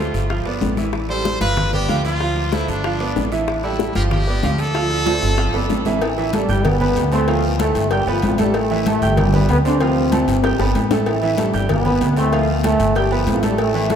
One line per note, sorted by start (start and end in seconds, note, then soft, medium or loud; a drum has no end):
0.00 0.24 A3 medium
0.00 0.43 F4 medium
0.00 0.24 A4 medium
0.00 0.25 C5 medium
0.14 0.44 G1 medium
0.14 high conga soft
0.14 high timbale medium
0.14 short guiro medium
0.30 0.43 F3 medium
0.30 0.43 F4 medium
0.30 0.43 F5 medium
0.30 high bongo medium
0.30 high conga soft
0.30 long guiro medium
0.46 0.61 G1 medium
0.46 0.72 B3 medium
0.46 0.72 B4 medium
0.46 0.72 D5 medium
0.46 high bongo soft
0.46 high conga soft
0.46 high timbale medium
0.61 1.36 A1 medium
0.61 high bongo soft
0.61 low bongo medium
0.61 high conga medium
0.61 low timbale medium
0.61 short guiro medium
0.77 1.04 E3 medium
0.77 1.04 E4 medium
0.77 1.04 E5 medium
0.77 high bongo soft
0.77 high conga medium
0.77 high timbale medium
0.77 short guiro medium
0.93 high bongo medium
0.93 high conga soft
0.93 high timbale medium
0.93 long guiro medium
1.09 1.36 G3 medium
1.09 1.36 G4 medium
1.09 1.36 A4 medium
1.09 1.39 C5 loud
1.09 high bongo soft
1.09 high conga soft
1.09 high timbale medium
1.25 high bongo medium
1.25 high conga medium
1.25 low timbale medium
1.25 short guiro medium
1.41 1.85 G1 medium
1.41 1.67 F3 medium
1.41 1.67 F4 medium
1.41 1.71 B4 loud
1.41 1.67 F5 medium
1.41 high conga medium
1.41 high timbale medium
1.41 short guiro medium
1.57 high bongo medium
1.57 high conga soft
1.57 low conga medium
1.57 high timbale medium
1.57 long guiro medium
1.73 1.86 B3 medium
1.73 2.03 G4 loud
1.73 1.86 B4 medium
1.73 1.87 D5 medium
1.73 high bongo soft
1.73 high conga soft
1.73 low conga medium
1.88 2.62 D2 medium
1.88 2.15 F3 medium
1.88 2.15 F4 medium
1.88 2.15 F5 medium
1.88 high bongo soft
1.88 low bongo medium
1.88 high conga medium
1.88 high timbale medium
1.88 low timbale medium
1.88 short guiro medium
2.05 2.49 F4 loud
2.05 high bongo soft
2.05 high conga soft
2.05 high timbale medium
2.05 short guiro medium
2.20 2.47 F3 medium
2.20 2.47 F4 medium
2.20 2.47 F5 medium
2.20 high bongo medium
2.20 high conga soft
2.20 long guiro medium
2.36 high bongo soft
2.36 high conga soft
2.36 high timbale medium
2.52 2.79 A3 medium
2.52 2.71 E4 medium
2.52 2.79 A4 medium
2.52 2.79 C5 medium
2.52 high bongo medium
2.52 high conga medium
2.52 high timbale medium
2.52 low timbale medium
2.52 short guiro medium
2.68 3.13 G1 medium
2.68 3.32 D4 medium
2.68 high conga soft
2.68 high timbale medium
2.68 short guiro medium
2.84 2.98 F3 medium
2.84 2.98 F4 medium
2.84 2.98 F5 medium
2.84 high bongo medium
2.84 high conga soft
2.84 long guiro medium
3.00 3.26 B3 medium
3.00 3.26 B4 medium
3.00 3.27 D5 medium
3.00 high bongo soft
3.00 high conga soft
3.00 high timbale medium
3.16 3.90 A1 medium
3.16 high bongo soft
3.16 low bongo medium
3.16 high conga medium
3.16 low timbale medium
3.16 short guiro medium
3.32 3.58 E3 medium
3.32 3.58 E4 medium
3.32 3.58 E5 medium
3.32 high bongo soft
3.32 high timbale medium
3.32 short guiro medium
3.48 high bongo medium
3.48 high conga soft
3.48 high timbale medium
3.48 long guiro medium
3.64 3.90 G3 medium
3.64 3.93 E4 medium
3.64 3.90 G4 medium
3.64 3.90 A4 medium
3.64 high bongo soft
3.64 high conga soft
3.64 high timbale medium
3.79 high bongo medium
3.79 high conga medium
3.79 low timbale medium
3.79 short guiro medium
3.95 4.40 G1 loud
3.95 4.21 F3 medium
3.95 4.22 F4 medium
3.95 4.03 G4 loud
3.95 4.22 F5 medium
3.95 high conga medium
3.95 high timbale medium
3.95 short guiro medium
4.11 4.61 G4 loud
4.11 high bongo medium
4.11 high conga soft
4.11 low conga medium
4.11 high timbale medium
4.11 long guiro medium
4.27 4.40 B3 medium
4.27 4.40 B4 medium
4.27 4.40 D5 medium
4.27 high bongo soft
4.27 high conga soft
4.43 5.17 D2 medium
4.43 4.69 F3 medium
4.43 4.69 F4 medium
4.43 4.70 F5 medium
4.43 high bongo soft
4.43 low bongo medium
4.43 high conga medium
4.43 high timbale medium
4.43 low timbale medium
4.43 short guiro medium
4.58 5.86 A4 loud
4.58 high bongo soft
4.58 high timbale medium
4.58 short guiro medium
4.74 5.01 F3 medium
4.74 5.01 F4 medium
4.74 5.01 F5 medium
4.74 high bongo medium
4.74 high conga soft
4.74 high timbale medium
4.74 long guiro medium
4.90 high bongo soft
4.90 high conga soft
4.90 high timbale medium
5.06 5.33 A3 medium
5.06 5.33 A4 medium
5.06 5.33 C5 medium
5.06 high bongo medium
5.06 high conga medium
5.06 high timbale loud
5.06 short guiro medium
5.22 5.52 G1 loud
5.22 high conga soft
5.22 low timbale medium
5.22 short guiro medium
5.38 5.51 F3 medium
5.38 5.51 F4 medium
5.38 5.52 F5 medium
5.38 high bongo medium
5.38 high conga soft
5.38 low timbale medium
5.38 long guiro medium
5.54 5.69 G1 medium
5.54 5.80 B3 medium
5.54 5.80 B4 medium
5.54 5.81 D5 medium
5.54 high bongo soft
5.54 high conga soft
5.54 low timbale loud
5.69 6.44 A1 medium
5.69 high bongo soft
5.69 low bongo medium
5.69 high conga medium
5.69 low timbale loud
5.69 short guiro medium
5.85 5.99 E3 medium
5.85 5.99 E4 medium
5.85 5.99 E5 medium
5.85 high bongo soft
5.85 high conga medium
5.85 low timbale loud
5.85 short guiro medium
6.01 6.31 E3 medium
6.01 6.32 E4 medium
6.01 cowbell loud
6.01 low agogo loud
6.01 long guiro medium
6.18 6.31 E3 medium
6.18 6.31 E4 medium
6.18 6.31 E5 medium
6.18 high conga soft
6.18 low agogo medium
6.33 6.66 G2 medium
6.33 6.65 G3 loud
6.33 6.46 A3 medium
6.33 6.46 A4 medium
6.33 6.47 A5 medium
6.33 cowbell medium
6.33 high conga loud
6.33 low timbale medium
6.33 low agogo medium
6.33 short guiro medium
6.49 6.93 G1 loud
6.49 6.75 G4 medium
6.49 6.75 G5 medium
6.49 6.75 G6 medium
6.49 high conga soft
6.49 short guiro medium
6.65 7.13 B2 medium
6.65 7.13 B3 loud
6.65 cowbell loud
6.65 high conga soft
6.65 low conga medium
6.65 low agogo loud
6.65 long guiro medium
6.81 7.07 B3 medium
6.81 7.07 B4 medium
6.81 7.07 B5 medium
6.81 high conga soft
6.81 low conga medium
6.81 low agogo medium
6.96 7.70 D2 medium
6.96 cowbell medium
6.96 high conga soft
6.96 low timbale medium
6.96 short guiro medium
7.12 7.43 A2 medium
7.12 7.42 A3 loud
7.12 7.25 C4 medium
7.12 7.26 C5 medium
7.12 7.26 C6 medium
7.12 high conga soft
7.12 low agogo loud
7.12 short guiro medium
7.28 7.54 F3 medium
7.28 7.54 F4 medium
7.28 7.54 F5 medium
7.28 cowbell loud
7.28 high conga soft
7.28 low agogo medium
7.28 long guiro medium
7.44 high conga soft
7.59 7.90 A2 medium
7.59 7.86 A3 medium
7.59 7.89 A3 loud
7.59 7.86 A4 medium
7.59 7.86 A5 medium
7.59 cowbell medium
7.59 high conga loud
7.59 low timbale medium
7.59 low agogo loud
7.59 short guiro medium
7.75 8.05 G1 loud
7.75 cowbell medium
7.75 high conga soft
7.75 short guiro medium
7.91 8.08 G2 medium
7.91 8.07 G3 loud
7.91 8.05 G4 medium
7.91 8.05 G5 medium
7.91 8.05 G6 medium
7.91 cowbell loud
7.91 high conga soft
7.91 low agogo medium
7.91 long guiro medium
8.07 8.22 G1 medium
8.07 8.22 F3 medium
8.07 8.33 B3 medium
8.07 8.22 F4 medium
8.07 8.33 B4 medium
8.07 8.34 B5 medium
8.07 high conga soft
8.07 low agogo loud
8.22 8.96 A1 loud
8.22 8.38 F3 loud
8.22 8.38 F4 medium
8.22 cowbell medium
8.22 high conga medium
8.22 low timbale medium
8.22 short guiro medium
8.38 8.55 G2 medium
8.38 8.55 G3 loud
8.38 8.65 A3 medium
8.38 8.65 A4 medium
8.38 8.65 A5 medium
8.38 cowbell medium
8.38 high conga medium
8.38 low agogo medium
8.38 short guiro medium
8.54 8.87 A2 medium
8.54 8.86 A3 loud
8.54 cowbell loud
8.54 high conga soft
8.54 low agogo loud
8.54 long guiro medium
8.70 8.83 E3 loud
8.70 8.84 E4 medium
8.70 8.84 E5 medium
8.70 high conga soft
8.70 low agogo medium
8.86 9.17 A2 medium
8.86 8.99 A3 medium
8.86 9.16 A3 loud
8.86 9.00 A4 medium
8.86 9.00 A5 medium
8.86 cowbell medium
8.86 high conga loud
8.86 low timbale medium
8.86 low agogo medium
8.86 short guiro medium
9.02 9.46 G1 loud
9.02 9.28 G4 medium
9.02 9.28 G5 medium
9.02 9.28 G6 medium
9.02 high conga soft
9.02 short guiro medium
9.17 9.50 G2 medium
9.17 9.50 G3 loud
9.17 cowbell loud
9.17 high conga soft
9.17 low conga medium
9.17 low agogo loud
9.17 long guiro medium
9.33 9.59 B3 medium
9.33 9.60 B4 medium
9.33 9.60 B5 medium
9.33 high conga soft
9.33 low conga medium
9.33 low agogo medium
9.49 10.22 D2 medium
9.49 9.57 B2 medium
9.49 9.57 B3 loud
9.49 cowbell medium
9.49 low timbale medium
9.49 short guiro medium
9.65 9.80 D3 medium
9.65 9.78 C4 medium
9.65 9.80 D4 loud
9.65 9.78 C5 medium
9.65 9.78 C6 medium
9.65 high conga soft
9.65 low agogo loud
9.65 short guiro medium
9.80 10.44 C3 medium
9.80 10.07 F3 medium
9.80 10.44 C4 loud
9.80 10.07 F4 medium
9.80 10.07 F5 medium
9.80 cowbell loud
9.80 high conga soft
9.80 low agogo medium
9.80 long guiro medium
9.97 high conga soft
10.12 10.38 A3 medium
10.12 10.38 A4 medium
10.12 10.38 A5 medium
10.12 cowbell medium
10.12 high conga loud
10.12 high timbale medium
10.12 low agogo loud
10.12 short guiro medium
10.28 10.57 G1 loud
10.28 cowbell medium
10.28 high conga soft
10.28 short guiro medium
10.44 10.57 G4 medium
10.44 10.57 G5 medium
10.44 10.57 G6 medium
10.44 cowbell loud
10.44 high bongo medium
10.44 high conga soft
10.44 low timbale medium
10.44 low agogo medium
10.44 long guiro medium
10.59 10.74 G1 medium
10.59 10.86 B3 medium
10.59 10.86 B4 medium
10.59 10.86 B5 medium
10.59 high bongo loud
10.59 high conga soft
10.59 low timbale loud
10.59 low agogo loud
10.75 11.48 A1 medium
10.75 cowbell medium
10.75 high conga medium
10.75 short guiro medium
10.91 11.17 A3 medium
10.91 11.17 A4 medium
10.91 11.17 A5 medium
10.91 cowbell medium
10.91 low bongo loud
10.91 high conga medium
10.91 low timbale medium
10.91 low agogo medium
10.91 short guiro medium
11.06 11.36 E3 medium
11.06 11.37 E4 medium
11.06 cowbell loud
11.06 high conga soft
11.06 low agogo loud
11.06 long guiro medium
11.22 11.35 E3 medium
11.22 11.36 E4 medium
11.22 11.36 E5 medium
11.22 high conga soft
11.22 low agogo medium
11.38 11.70 G2 medium
11.38 11.70 G3 loud
11.38 11.51 A3 medium
11.38 11.51 A4 medium
11.38 11.51 A5 medium
11.38 cowbell medium
11.38 high conga loud
11.38 low timbale medium
11.38 low agogo medium
11.38 short guiro medium
11.54 11.98 G1 loud
11.54 11.80 G4 medium
11.54 11.80 G5 medium
11.54 11.80 G6 medium
11.54 high conga soft
11.54 short guiro medium
11.69 12.14 B2 medium
11.69 12.14 B3 loud
11.69 cowbell loud
11.69 high conga soft
11.69 low conga medium
11.69 low agogo loud
11.69 long guiro medium
11.85 12.11 B3 medium
11.85 12.11 B4 medium
11.85 12.12 B5 medium
11.85 high conga soft
11.85 low conga medium
11.85 low agogo medium
12.01 12.74 D2 loud
12.01 cowbell medium
12.01 low timbale medium
12.01 short guiro medium
12.17 12.47 A2 medium
12.17 12.47 A3 loud
12.17 12.30 C4 medium
12.17 12.30 C5 medium
12.17 12.30 C6 medium
12.17 high conga soft
12.17 low agogo loud
12.17 short guiro medium
12.32 12.59 F3 medium
12.32 12.59 F4 medium
12.32 12.59 F5 medium
12.32 cowbell loud
12.32 high conga soft
12.32 low agogo medium
12.32 long guiro medium
12.49 high conga soft
12.64 12.94 A2 medium
12.64 12.90 A3 medium
12.64 12.94 A3 loud
12.64 12.90 A4 medium
12.64 12.90 A5 medium
12.64 cowbell medium
12.64 high conga medium
12.64 low timbale medium
12.64 low agogo loud
12.64 short guiro medium
12.80 13.24 G1 loud
12.80 cowbell medium
12.80 high conga soft
12.80 short guiro medium
12.95 13.11 G2 medium
12.95 13.11 G3 loud
12.95 13.09 G4 medium
12.95 13.09 G5 medium
12.95 13.09 G6 medium
12.95 cowbell loud
12.95 high conga soft
12.95 low agogo medium
12.95 long guiro medium
13.11 13.26 F3 medium
13.11 13.37 B3 medium
13.11 13.27 F4 medium
13.11 13.38 B4 medium
13.11 13.38 B5 medium
13.11 high conga soft
13.11 low agogo loud
13.27 13.96 A1 loud
13.27 13.42 F3 medium
13.27 13.42 F4 medium
13.27 cowbell medium
13.27 high conga medium
13.27 low timbale medium
13.27 short guiro medium
13.43 13.59 G2 medium
13.43 13.59 G3 medium
13.43 13.69 A3 medium
13.43 13.69 A4 medium
13.43 13.69 A5 medium
13.43 cowbell medium
13.43 high conga medium
13.43 low agogo medium
13.43 short guiro medium
13.58 13.88 A2 medium
13.58 13.88 A3 loud
13.58 cowbell loud
13.58 high conga soft
13.58 low agogo loud
13.58 long guiro medium
13.74 13.87 E3 loud
13.74 13.87 E4 medium
13.74 13.87 E5 medium
13.74 high conga soft
13.74 low agogo medium
13.90 13.96 A2 medium
13.90 13.96 A3 loud
13.90 13.96 A3 medium
13.90 13.96 A4 medium
13.90 13.96 A5 medium
13.90 cowbell medium
13.90 high conga loud
13.90 low timbale medium
13.90 low agogo medium
13.90 short guiro medium